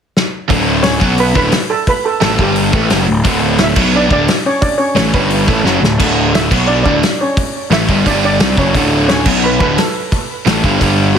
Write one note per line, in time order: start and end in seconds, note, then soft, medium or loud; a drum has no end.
0.17 snare medium
0.48 0.98 D1 medium
0.48 0.99 D2 medium
0.48 1.00 A2 loud
0.48 1.01 D3 loud
0.48 kick loud
0.48 open hi-hat medium
0.83 1.15 C#4 medium
0.83 1.19 C#5 loud
0.83 snare loud
0.83 open hi-hat medium
1.00 1.33 B1 medium
1.00 1.34 B2 medium
1.00 1.34 F#3 loud
1.00 1.35 B3 medium
1.00 kick loud
1.18 1.35 B4 loud
1.18 1.35 B5 medium
1.18 open hi-hat medium
1.34 1.52 D1 medium
1.34 1.51 D2 medium
1.34 1.52 A2 medium
1.34 1.52 D3 loud
1.34 1.71 B4 loud
1.34 1.68 B5 medium
1.34 kick loud
1.52 snare loud
1.52 open hi-hat medium
1.70 1.86 A4 medium
1.70 1.86 A5 medium
1.87 2.04 B4 medium
1.87 2.05 B5 medium
1.87 kick loud
1.87 open hi-hat medium
2.05 2.20 A4 medium
2.05 2.19 A5 medium
2.20 2.38 A1 loud
2.20 2.38 A2 loud
2.20 2.38 E3 loud
2.20 2.38 A3 loud
2.20 2.37 A4 medium
2.20 2.37 A5 medium
2.20 snare loud
2.20 open hi-hat medium
2.38 2.71 G1 medium
2.38 2.72 G2 medium
2.38 2.72 D3 loud
2.38 2.73 G3 loud
2.38 2.72 G4 medium
2.38 2.71 G5 medium
2.38 kick loud
2.56 open hi-hat medium
2.73 2.89 A1 medium
2.73 2.89 A2 loud
2.73 2.90 E3 loud
2.73 2.90 A3 loud
2.73 kick loud
2.90 3.07 F#1 loud
2.90 3.06 F#2 loud
2.90 3.06 C#3 loud
2.90 3.08 F#3 loud
2.90 snare loud
2.90 open hi-hat medium
3.06 3.24 D1 medium
3.06 3.21 D2 medium
3.06 3.21 A2 medium
3.24 3.73 D1 medium
3.24 3.76 D2 medium
3.24 3.76 A2 loud
3.24 3.77 D3 loud
3.24 kick loud
3.24 open hi-hat medium
3.58 3.91 E4 medium
3.58 snare loud
3.58 open hi-hat medium
3.64 3.97 E5 loud
3.76 4.08 B1 medium
3.76 4.10 B2 medium
3.76 4.10 F#3 loud
3.76 4.10 B3 loud
3.76 kick loud
3.76 crash loud
3.95 4.10 D4 medium
3.95 4.11 D5 medium
4.10 4.26 D1 loud
4.10 4.27 D2 medium
4.10 4.27 A2 medium
4.10 4.28 D3 medium
4.10 4.43 D4 medium
4.10 4.43 D5 loud
4.10 kick loud
4.28 snare loud
4.28 open hi-hat medium
4.46 4.61 C#4 medium
4.46 4.63 C#5 medium
4.61 4.78 D4 medium
4.61 4.79 D5 medium
4.61 kick loud
4.61 open hi-hat medium
4.78 4.95 C#4 medium
4.78 4.95 C#5 medium
4.96 5.12 A1 loud
4.96 5.12 A2 medium
4.96 5.13 E3 loud
4.96 5.13 A3 loud
4.96 5.12 C#4 medium
4.96 5.14 C#5 medium
4.96 snare loud
4.96 open hi-hat medium
5.13 5.46 G1 medium
5.13 5.47 G2 medium
5.13 5.47 D3 medium
5.13 5.48 G3 loud
5.13 5.46 B4 medium
5.13 5.46 B5 medium
5.13 kick loud
5.30 open hi-hat medium
5.47 5.63 A1 loud
5.47 5.64 A2 medium
5.47 5.65 E3 loud
5.47 5.65 A3 loud
5.47 kick loud
5.63 5.80 F#1 loud
5.63 5.81 F#2 loud
5.63 5.82 C#3 medium
5.63 5.82 F#3 loud
5.63 snare medium
5.80 5.97 D1 medium
5.80 5.96 D2 medium
5.80 5.96 A2 medium
5.80 snare medium
5.99 6.47 D1 medium
5.99 6.50 D2 medium
5.99 6.51 A2 medium
5.99 6.51 D3 loud
5.99 kick loud
5.99 splash medium
5.99 crash loud
6.35 6.66 E4 medium
6.35 6.70 E5 loud
6.35 snare loud
6.35 open hi-hat medium
6.51 6.83 B1 loud
6.51 6.84 B2 medium
6.51 6.85 F#3 medium
6.51 6.85 B3 medium
6.51 kick loud
6.51 crash loud
6.67 6.84 D4 medium
6.67 6.82 D5 medium
6.83 7.01 D1 medium
6.83 7.01 D2 medium
6.83 7.02 A2 medium
6.83 7.02 D3 loud
6.83 7.17 D4 medium
6.83 7.16 D5 medium
6.83 kick loud
7.03 snare loud
7.03 open hi-hat medium
7.21 7.37 C#4 medium
7.21 7.36 C#5 medium
7.37 kick loud
7.37 open hi-hat medium
7.70 7.87 A1 loud
7.70 7.88 A2 loud
7.70 7.89 E3 loud
7.70 7.89 A3 medium
7.70 8.04 E4 medium
7.70 8.07 E5 loud
7.70 snare loud
7.70 open hi-hat medium
7.88 8.05 G1 loud
7.88 8.04 G2 medium
7.88 8.05 D3 medium
7.88 8.06 G3 medium
7.88 kick loud
8.05 8.38 G1 loud
8.05 8.39 G2 medium
8.05 8.40 D3 medium
8.05 8.40 G3 loud
8.05 8.22 D4 medium
8.05 8.24 D5 medium
8.05 kick loud
8.05 open hi-hat medium
8.24 8.55 D4 medium
8.24 8.56 D5 loud
8.40 8.56 C2 loud
8.40 8.56 C3 medium
8.40 8.57 G3 loud
8.40 8.58 C4 loud
8.40 snare loud
8.40 open hi-hat medium
8.57 8.73 F#1 loud
8.57 8.74 F#2 medium
8.57 8.74 C#3 loud
8.57 8.74 F#3 loud
8.57 8.74 C#4 medium
8.57 8.74 C#5 medium
8.57 kick loud
8.75 9.23 D1 loud
8.75 9.26 D2 loud
8.75 9.26 A2 loud
8.75 9.26 D3 loud
8.75 kick loud
8.75 open hi-hat medium
9.08 9.41 C#4 medium
9.08 9.41 C#5 loud
9.08 snare loud
9.08 open hi-hat medium
9.26 9.58 B1 medium
9.26 9.59 B2 medium
9.26 9.60 F#3 medium
9.26 9.60 B3 loud
9.26 kick loud
9.26 crash loud
9.44 9.60 B4 medium
9.44 9.58 B5 medium
9.59 9.76 D1 loud
9.59 9.77 D2 loud
9.59 9.77 A2 loud
9.59 9.77 D3 loud
9.59 9.78 B4 loud
9.59 9.76 B5 medium
9.59 kick loud
9.77 11.12 A4 medium
9.77 11.11 A5 medium
9.77 snare loud
9.77 open hi-hat medium
10.12 kick loud
10.12 open hi-hat medium
10.45 10.62 A1 medium
10.45 10.63 A2 medium
10.45 10.63 E3 medium
10.45 10.63 A3 loud
10.45 snare loud
10.45 open hi-hat medium
10.63 10.80 G1 loud
10.63 10.79 G2 medium
10.63 10.80 D3 medium
10.63 10.81 G3 medium
10.63 kick loud
10.80 11.13 G1 medium
10.80 11.14 G2 medium
10.80 11.15 D3 loud
10.80 11.15 G3 medium
10.80 kick loud
10.80 open hi-hat medium
11.15 11.19 C3 medium
11.15 11.19 F#4 medium